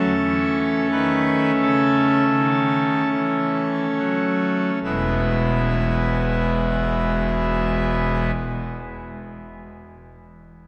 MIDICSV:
0, 0, Header, 1, 2, 480
1, 0, Start_track
1, 0, Key_signature, 4, "major"
1, 0, Tempo, 1376147
1, 564, Tempo, 1511335
1, 1044, Tempo, 1699717
1, 1524, Tempo, 1657459
1, 1525, Time_signature, 4, 2, 24, 8
1, 3217, End_track
2, 0, Start_track
2, 0, Title_t, "Pipe organ"
2, 0, Program_c, 0, 19
2, 0, Note_on_c, 0, 54, 65
2, 0, Note_on_c, 0, 57, 46
2, 0, Note_on_c, 0, 61, 43
2, 0, Note_on_c, 0, 69, 86
2, 47, Note_off_c, 0, 54, 0
2, 84, Note_on_c, 0, 52, 68
2, 285, Note_off_c, 0, 52, 0
2, 305, Note_off_c, 0, 69, 0
2, 320, Note_on_c, 0, 51, 61
2, 321, Note_on_c, 0, 71, 88
2, 528, Note_off_c, 0, 51, 0
2, 528, Note_off_c, 0, 71, 0
2, 563, Note_on_c, 0, 69, 88
2, 564, Note_on_c, 0, 49, 64
2, 762, Note_off_c, 0, 49, 0
2, 802, Note_on_c, 0, 51, 63
2, 1010, Note_off_c, 0, 51, 0
2, 1031, Note_off_c, 0, 69, 0
2, 1047, Note_on_c, 0, 52, 59
2, 1248, Note_off_c, 0, 52, 0
2, 1285, Note_on_c, 0, 54, 65
2, 1490, Note_off_c, 0, 54, 0
2, 1513, Note_off_c, 0, 61, 0
2, 1514, Note_off_c, 0, 57, 0
2, 1526, Note_on_c, 0, 28, 54
2, 1526, Note_on_c, 0, 40, 54
2, 1527, Note_on_c, 0, 47, 48
2, 1527, Note_on_c, 0, 56, 49
2, 1527, Note_on_c, 0, 64, 59
2, 1528, Note_on_c, 0, 59, 45
2, 2532, Note_off_c, 0, 28, 0
2, 2532, Note_off_c, 0, 40, 0
2, 2532, Note_off_c, 0, 56, 0
2, 2533, Note_off_c, 0, 47, 0
2, 2533, Note_off_c, 0, 59, 0
2, 2533, Note_off_c, 0, 64, 0
2, 3217, End_track
0, 0, End_of_file